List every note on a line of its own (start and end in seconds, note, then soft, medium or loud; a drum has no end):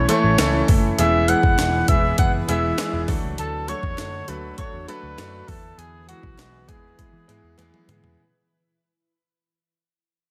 0.00 0.08 E3 medium
0.00 0.08 A3 medium
0.00 0.96 A3 medium
0.00 0.09 C#4 medium
0.00 0.96 C#4 medium
0.00 0.09 E4 medium
0.00 0.94 E4 medium
0.00 0.09 A4 loud
0.08 0.28 E3 loud
0.08 0.28 A3 medium
0.08 0.28 C#4 medium
0.08 0.28 E4 medium
0.08 0.28 A4 loud
0.08 0.65 C#5 medium
0.08 0.65 C#6 medium
0.08 closed hi-hat medium
0.24 0.35 A1 medium
0.38 0.61 C#2 medium
0.38 0.58 E3 medium
0.38 0.58 A3 medium
0.38 0.58 C#4 medium
0.38 0.58 E4 medium
0.38 0.58 A4 loud
0.38 snare loud
0.38 clap medium
0.38 closed hi-hat medium
0.38 tambourine medium
0.68 0.91 F#1 medium
0.68 0.87 E3 medium
0.68 0.88 A3 medium
0.68 0.88 C#4 medium
0.68 0.88 E4 medium
0.68 0.88 A4 medium
0.68 kick medium
0.68 open hi-hat medium
0.98 1.32 E1 loud
0.98 3.06 E3 medium
0.98 1.18 E3 medium
0.98 1.18 G#3 medium
0.98 1.18 B3 medium
0.98 3.06 E4 medium
0.98 1.18 E4 medium
0.98 3.06 G#4 medium
0.98 1.18 G#4 loud
0.98 3.06 B4 medium
0.98 1.30 E5 loud
0.98 1.27 E6 medium
0.98 closed hi-hat loud
1.28 1.48 E3 medium
1.28 1.48 G#3 medium
1.28 1.48 B3 medium
1.28 1.48 E4 medium
1.28 1.48 G#4 medium
1.28 1.89 F#5 loud
1.28 1.88 F#6 medium
1.28 closed hi-hat medium
1.43 1.55 F#1 medium
1.43 kick medium
1.58 1.81 E1 medium
1.58 1.78 E3 medium
1.58 1.78 G#3 medium
1.58 1.78 B3 medium
1.58 1.78 E4 medium
1.58 1.78 G#4 medium
1.58 snare loud
1.58 clap medium
1.58 closed hi-hat medium
1.58 tambourine medium
1.88 2.11 E1 medium
1.88 2.08 E3 medium
1.88 2.08 G#3 medium
1.88 2.08 B3 medium
1.88 2.08 E4 medium
1.88 2.08 G#4 medium
1.88 2.17 E5 medium
1.88 2.16 E6 medium
1.88 kick loud
1.88 closed hi-hat loud
2.18 2.41 F#1 medium
2.18 2.38 E3 medium
2.18 2.38 G#3 medium
2.18 2.38 B3 medium
2.18 2.38 E4 medium
2.18 2.38 G#4 medium
2.18 2.32 F#5 loud
2.18 2.32 F#6 loud
2.18 kick medium
2.18 closed hi-hat medium
2.48 2.71 E1 loud
2.48 2.67 E3 loud
2.48 2.68 G#3 medium
2.48 2.68 B3 medium
2.48 2.68 E4 medium
2.48 2.68 G#4 loud
2.48 3.05 E5 medium
2.48 3.05 E6 medium
2.48 closed hi-hat medium
2.78 2.97 E3 loud
2.78 2.98 G#3 medium
2.78 2.98 B3 medium
2.78 2.98 E4 medium
2.78 2.98 G#4 loud
2.78 snare loud
2.78 clap medium
2.78 closed hi-hat loud
2.78 tambourine medium
2.93 3.05 E1 loud
3.07 3.20 D2 loud
3.07 5.46 D3 medium
3.07 3.56 F#3 medium
3.07 3.56 A3 medium
3.07 5.46 D4 medium
3.07 3.56 D4 medium
3.07 5.46 F#4 medium
3.07 3.56 F#4 medium
3.07 5.46 A4 medium
3.07 3.57 A4 medium
3.07 kick loud
3.07 open hi-hat medium
3.24 3.35 C#2 loud
3.38 3.72 D2 loud
3.38 3.70 A4 loud
3.38 3.67 A5 medium
3.38 closed hi-hat medium
3.68 3.87 F#3 medium
3.68 3.87 A3 medium
3.68 3.88 D4 medium
3.68 3.88 F#4 medium
3.68 3.88 A4 medium
3.68 4.30 C#5 loud
3.68 4.29 C#6 medium
3.68 closed hi-hat medium
3.83 3.95 E2 loud
3.83 kick medium
3.98 4.21 F#2 medium
3.98 4.17 F#3 medium
3.98 4.18 A3 medium
3.98 4.18 D4 medium
3.98 4.18 F#4 medium
3.98 4.18 A4 medium
3.98 snare loud
3.98 clap medium
3.98 closed hi-hat medium
3.98 tambourine medium
4.28 4.51 D2 medium
4.28 4.47 F#3 medium
4.28 4.47 A3 medium
4.28 4.48 D4 medium
4.28 4.48 F#4 medium
4.28 4.48 A4 medium
4.28 4.58 B4 loud
4.28 4.59 B5 medium
4.28 closed hi-hat loud
4.58 4.77 F#3 medium
4.58 4.77 A3 medium
4.58 4.78 D4 medium
4.58 4.78 F#4 medium
4.58 4.78 A4 medium
4.58 4.87 C#5 loud
4.58 4.86 C#6 loud
4.58 kick medium
4.58 closed hi-hat medium
4.73 4.85 E2 medium
4.88 5.07 F#3 medium
4.88 5.08 A3 medium
4.88 5.08 D4 medium
4.88 5.08 F#4 medium
4.88 5.08 A4 loud
4.88 5.50 B4 loud
4.88 5.45 B5 medium
4.88 closed hi-hat medium
5.03 5.15 D2 medium
5.18 5.41 F#2 medium
5.18 5.37 F#3 loud
5.18 5.37 A3 medium
5.18 5.38 D4 medium
5.18 5.38 F#4 medium
5.18 5.38 A4 loud
5.18 snare loud
5.18 clap medium
5.18 closed hi-hat medium
5.18 tambourine medium
5.47 5.71 E2 loud
5.47 5.96 E3 medium
5.47 8.16 E3 medium
5.47 5.96 B3 medium
5.47 8.16 E4 medium
5.47 5.97 E4 medium
5.47 5.80 A4 loud
5.47 8.16 B4 medium
5.47 5.97 B4 medium
5.47 5.79 A5 medium
5.47 kick loud
5.47 open hi-hat medium
5.78 6.12 E2 loud
5.78 6.09 G#4 loud
5.78 6.08 G#5 medium
5.78 closed hi-hat loud
6.08 6.27 E3 medium
6.08 6.27 G#3 medium
6.08 6.28 B3 medium
6.08 6.28 E4 medium
6.08 6.70 F#4 medium
6.08 6.28 G#4 medium
6.08 6.65 F#5 medium
6.08 closed hi-hat medium
6.23 6.35 B1 medium
6.23 kick loud
6.38 6.69 B1 medium
6.38 6.57 E3 medium
6.38 6.58 G#3 medium
6.38 6.58 B3 medium
6.38 6.58 E4 medium
6.38 6.58 G#4 medium
6.38 snare loud
6.38 clap medium
6.38 closed hi-hat medium
6.38 tambourine medium
6.68 6.91 E2 medium
6.68 6.87 E3 medium
6.68 6.88 G#3 medium
6.68 6.88 B3 medium
6.68 6.88 E4 medium
6.68 7.89 G#4 medium
6.68 6.88 G#4 medium
6.68 7.88 G#5 medium
6.68 kick loud
6.68 closed hi-hat loud
6.98 7.17 E3 medium
6.98 7.18 G#3 medium
6.98 7.18 B3 medium
6.98 7.18 E4 medium
6.98 7.18 G#4 medium
6.98 kick medium
6.98 closed hi-hat medium
7.13 7.24 E3 medium
7.28 7.40 G#2 medium
7.28 7.47 E3 medium
7.28 7.47 G#3 medium
7.28 7.48 B3 medium
7.28 7.48 E4 medium
7.28 7.48 G#4 loud
7.28 closed hi-hat medium
7.43 7.54 E2 medium
7.58 7.69 E2 medium
7.58 7.77 E3 loud
7.58 7.78 G#3 loud
7.58 7.78 B3 loud
7.58 7.78 E4 loud
7.58 7.78 G#4 loud
7.58 clap medium
7.58 closed hi-hat loud
7.58 high tom medium
7.74 mid tom medium
7.88 7.99 G#2 medium
7.88 8.08 E3 medium
7.88 8.08 G#3 medium
7.88 8.08 B3 medium
7.88 8.08 E4 medium
7.88 8.08 G#4 loud
7.88 closed hi-hat medium
7.88 mid tom loud
8.03 8.15 E2 medium
8.03 floor tom loud